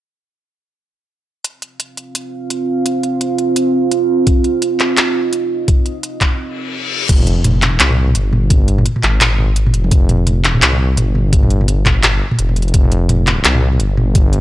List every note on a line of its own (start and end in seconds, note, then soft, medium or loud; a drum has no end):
1.44 7.05 C4 medium
1.44 7.05 F4 medium
1.44 4.24 F5 medium
1.44 closed hi-hat medium
1.62 closed hi-hat soft
1.80 closed hi-hat medium
1.97 closed hi-hat soft
2.15 closed hi-hat medium
2.50 closed hi-hat medium
2.86 closed hi-hat medium
3.03 closed hi-hat soft
3.21 closed hi-hat medium
3.39 closed hi-hat soft
3.56 closed hi-hat medium
3.92 closed hi-hat medium
4.27 7.07 D#5 medium
4.27 kick loud
4.27 closed hi-hat medium
4.44 closed hi-hat soft
4.62 closed hi-hat medium
4.80 clap medium
4.80 closed hi-hat soft
4.97 clap loud
4.97 closed hi-hat medium
5.33 closed hi-hat medium
5.68 kick loud
5.68 closed hi-hat medium
5.86 closed hi-hat soft
6.03 closed hi-hat medium
6.21 kick medium
6.21 clap medium
6.21 closed hi-hat soft
6.39 reverse cymbal medium
7.09 7.43 F1 medium
7.09 kick loud
7.09 closed hi-hat medium
7.09 crash loud
7.09 impact medium
7.20 mid tom medium
7.27 closed hi-hat soft
7.44 7.79 F1 loud
7.44 closed hi-hat medium
7.44 mid tom medium
7.62 clap medium
7.62 closed hi-hat soft
7.62 mid tom medium
7.80 8.14 C2 loud
7.80 clap loud
7.80 closed hi-hat medium
7.90 mid tom medium
8.08 mid tom medium
8.15 8.85 G1 loud
8.15 closed hi-hat medium
8.33 mid tom medium
8.50 kick loud
8.50 closed hi-hat medium
8.50 mid tom medium
8.68 closed hi-hat soft
8.78 mid tom medium
8.86 closed hi-hat medium
8.96 mid tom medium
9.03 9.73 G#1 loud
9.03 clap medium
9.03 closed hi-hat soft
9.21 clap loud
9.21 closed hi-hat medium
9.21 mid tom medium
9.39 mid tom medium
9.56 closed hi-hat medium
9.67 mid tom medium
9.74 9.90 F1 loud
9.74 closed hi-hat soft
9.84 mid tom soft
9.91 10.26 F1 medium
9.91 kick loud
9.91 closed hi-hat medium
10.09 closed hi-hat soft
10.09 mid tom medium
10.27 10.61 F1 loud
10.27 closed hi-hat medium
10.27 mid tom medium
10.44 clap medium
10.44 closed hi-hat soft
10.55 mid tom medium
10.62 10.96 C2 loud
10.62 clap loud
10.62 closed hi-hat medium
10.73 mid tom medium
10.97 11.67 G1 loud
10.97 closed hi-hat medium
10.97 mid tom medium
11.15 mid tom medium
11.33 kick loud
11.33 closed hi-hat medium
11.43 mid tom medium
11.51 closed hi-hat soft
11.61 mid tom medium
11.68 12.20 G1 loud
11.68 closed hi-hat medium
11.86 kick medium
11.86 clap medium
11.86 closed hi-hat soft
11.86 mid tom medium
12.03 clap loud
12.03 closed hi-hat medium
12.03 mid tom soft
12.31 mid tom medium
12.39 12.73 F1 loud
12.39 closed hi-hat medium
12.49 mid tom soft
12.56 closed hi-hat soft
12.62 closed hi-hat soft
12.68 closed hi-hat soft
12.74 13.08 F1 medium
12.74 kick loud
12.74 closed hi-hat medium
12.84 mid tom medium
12.92 closed hi-hat soft
13.09 13.43 F1 loud
13.09 closed hi-hat medium
13.09 mid tom medium
13.27 clap medium
13.27 closed hi-hat soft
13.27 mid tom soft
13.45 13.79 C2 medium
13.45 clap loud
13.45 closed hi-hat medium
13.55 mid tom medium
13.73 mid tom medium
13.80 14.41 G1 loud
13.80 closed hi-hat medium
13.97 mid tom medium
14.15 kick loud
14.15 closed hi-hat medium
14.15 mid tom soft
14.33 closed hi-hat soft